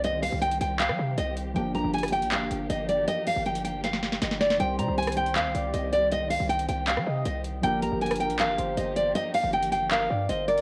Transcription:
<<
  \new Staff \with { instrumentName = "Nylon-string guitar" } { \time 4/4 \key c \minor \tempo 4 = 158 ees''8 f''8 g''8 g''8 f''4 ees''8 r8 | g''8 bes''8 aes''8 g''8 f''4 ees''8 d''8 | ees''8 f''8 g''8 g''8 f''4 ees''8 d''8 | g''8 bes''8 aes''8 g''8 f''4 ees''8 d''8 |
ees''8 f''8 g''8 g''8 f''4 ees''8 r8 | g''8 bes''8 aes''8 g''8 f''4 ees''8 d''8 | ees''8 f''8 g''8 g''8 f''4 ees''8 d''8 | }
  \new Staff \with { instrumentName = "Soft synth lead" } { \time 4/4 \key c \minor r1 | r1 | r1 | c''2~ c''8 d''4. |
r2 r8 ees''8 r4 | bes'2~ bes'8 c''4. | r2 bes'8 d''8 c''8 bes'8 | }
  \new Staff \with { instrumentName = "Synth keys" } { \time 4/4 \key c \minor <ees g c' g'>1 | <f bes d' g'>1~ | <f bes d' g'>1 | <ees g c' g'>1~ |
<ees g c' g'>1 | <f bes d' g'>1~ | <f bes d' g'>1 | }
  \new Staff \with { instrumentName = "String section" } { \time 4/4 \key c \minor << { g'1~ | g'1~ | g'1~ | g'1~ |
g'1 | g'1~ | g'1 | } \\ { <ees c'>1 | <f bes>1~ | <f bes>1 | <ees c'>1~ |
<ees c'>1 | <f bes>1~ | <f bes>1 | } >> }
  \new Staff \with { instrumentName = "808-style bass" } { \clef bass \time 4/4 \key c \minor c,8. c,8. c,8. g16 c8 c,4 | g,,8 bes,,16 g,,4 bes,,16. g,,16. g,,8 g,,4 | r8. g,,2~ g,,16 g,,4 | c,8 c16 c,4~ c,16 ees,16 c,16 c,8 c,4~ |
c,8. c,8. c,8. g16 c8 c,4 | g,,8 bes,,16 g,,4 bes,,16. g,,16. g,,8 g,,4 | r8. g,,4.~ g,,16 g,8 g,,4 | }
  \new DrumStaff \with { instrumentName = "Drums" } \drummode { \time 4/4 hh8 hho8 hh16 hh16 hh8 <hc hh>16 ss8. hh8 hh8 | hh8 hh8 hh32 hh32 <hh ss>32 hh32 hh16 hh16 <hc hh>8 hh8 hh8 hh8 | hh8 hho8 hh16 hh16 hh8 <hh sn>16 sn16 sn16 sn16 <hh sn>16 sn16 <hh sn>16 <hh sn>16 | hh8 hh8 hh32 hh32 <hh ss>32 hh32 hh16 hh16 <hc hh>8 hh8 hh8 hh8 |
hh8 hho8 hh16 hh16 hh8 <hc hh>16 ss8. hh8 hh8 | hh8 hh8 hh32 hh32 <hh ss>32 hh32 hh16 hh16 <hc hh>8 hh8 hh8 hh8 | hh8 hho8 hh16 hh16 hh8 <hc hh>4 hh8 hh16 hh16 | }
>>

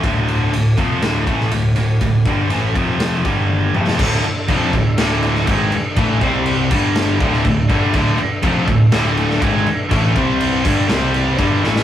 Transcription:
<<
  \new Staff \with { instrumentName = "Tonewheel organ" } { \time 4/4 \key c \lydian \tempo 4 = 122 r1 | r1 | <d' a' e''>1~ | <d' a' e''>8 <c' g' d''>4 <g d' a'>4 <a' e''>4.~ |
<a' e''>1~ | <a' e''>8 <c' g' d''>4 <d' a' e''>8 <c' g' d''>4 <d' a' e''>4 | }
  \new Staff \with { instrumentName = "Distorted electric guitar" } { \clef bass \time 4/4 \key c \lydian <d, a, d>4 <d, a,>8 <f, c f>8 <d, a, d>8 <a, e a>8 <d, a,>8 <d, a,>8 | <d, a,>8 <g, d g>8 <a, e a>8 <f, c f>4 <g, d g>4 <f, c f>8 | <d, a, d>8 r8 <f, c f>8 <d, a,>8 <d, a, d>4 <gis, ees gis>8 r8 | <a, e a>8 <c g c'>4 <g, d g>4 <d, a, d>8 <d, a,>8 <g, d g>8 |
<d, a, d>8 r8 <f, c f>8 <d, a,>8 <d, a, d>4 <gis, ees gis>8 r8 | <a, e a>8 <c g c'>4 <g, d g>8 <c g c'>4 <g, d g>8 <a, e a>8 | }
  \new Staff \with { instrumentName = "Distorted electric guitar" } { \clef bass \time 4/4 \key c \lydian r1 | r1 | <d, a, d>8 r8 <f, c f>8 <d, a,>8 <d, a, d>4 <gis, ees gis>8 r8 | <a, e a>8 <c g c'>4 <g, d g>4 <d, a, d>8 <d, a,>8 <g, d g>8 |
<d, a, d>8 r8 <f, c f>8 <d, a,>8 <d, a, d>4 <gis, ees gis>8 r8 | <a, e a>8 <c g c'>4 <g, d g>8 <c g c'>4 <g, d g>8 <a, e a>8 | }
  \new Staff \with { instrumentName = "Overdriven electric guitar" } { \clef bass \time 4/4 \key c \lydian <d, a, d>4 <d, a,>8 <f, c f>8 <d, a, d>8 <a, e a>8 <d, a,>8 <d, a,>8 | <d, a,>8 <g, d g>8 <a, e a>8 <f, c f>4 <g, d g>4 <f, c f>8 | <d, a, d>8 r8 <f, c f>8 <d, a,>8 <d, a, d>4 <gis, ees gis>8 r8 | <a, e a>8 <c g c'>4 <g, d g>4 <d, a, d>8 <d, a,>8 <g, d g>8 |
<d, a, d>8 r8 <f, c f>8 <d, a,>8 <d, a, d>4 <gis, ees gis>8 r8 | <a, e a>8 <c g c'>4 <g, d g>8 <c g c'>4 <g, d g>8 <a, e a>8 | }
  \new Staff \with { instrumentName = "Picked electric bass" } { \clef bass \time 4/4 \key c \lydian d,,4 d,,8 f,,8 d,,8 a,,8 d,,8 d,,8 | d,,8 g,,8 a,,8 f,,4 g,,4 f,,8 | d,,8 r8 f,,8 d,,8 d,,4 gis,,8 r8 | a,,8 c,4 g,,4 d,,8 d,,8 g,,8 |
d,,8 r8 f,,8 d,,8 d,,4 gis,,8 r8 | a,,8 c,4 g,,8 c,4 g,,8 a,,8 | }
  \new DrumStaff \with { instrumentName = "Drums" } \drummode { \time 4/4 <bd cymr>8 cymr8 cymr8 <bd cymr>8 <cymr sn>8 <bd cymr>16 sn16 cymr8 cymr8 | <bd cymr>8 <bd cymr>8 cymr8 <bd cymr>8 <cymr sn>8 <bd cymr>8 tommh8 toml16 sn16 | <cymc bd>8 cymc8 <cymc bd>8 <cymc bd>8 <cymc sn>8 cymc16 sn16 <cymc bd>8 cymc8 | <cymc bd>8 <cymc bd>8 cymc8 <cymc bd>8 <cymc sn>8 <cymc bd>16 sn16 <cymc bd>8 <cymc bd>8 |
<cymc bd>8 cymc8 <cymc bd>8 <cymc bd>8 <cymc sn>8 cymc16 sn16 <cymc bd>8 cymc8 | <cymc bd>8 <cymc bd>8 cymc8 <cymc bd>8 <cymc sn>8 cymc8 <cymc bd>8 sn16 sn16 | }
>>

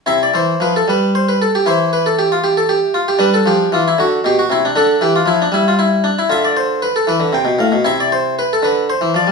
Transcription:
<<
  \new Staff \with { instrumentName = "Harpsichord" } { \time 6/8 \key c \major \tempo 4. = 77 << { e''16 d''16 c''8 b'16 a'16 b'8 c''16 b'16 a'16 g'16 | c''8 b'16 a'16 g'16 f'16 g'16 a'16 g'8 f'16 g'16 | b'16 a'16 g'8 f'16 e'16 fis'8 g'16 fis'16 e'16 d'16 | a'8 g'16 f'16 e'16 d'16 e'16 f'16 e'8 d'16 e'16 |
e''16 d''16 c''8 b'16 a'16 b'8 g''8 f''8 | e''16 d''16 c''8 b'16 a'16 b'8 c''8 d''8 | } \\ { e'4. r4. | e'2. | d'4. r4. | d'2. |
f'4. r4. | e'4. r4. | } >> }
  \new Staff \with { instrumentName = "Harpsichord" } { \clef bass \time 6/8 \key c \major c8 e8 f8 g4. | e2. | g8 f8 e8 d8 b,8 c8 | d8 e8 f8 g4. |
d4. e16 d16 c16 b,16 a,16 b,16 | c4. d8. e16 f16 g16 | }
>>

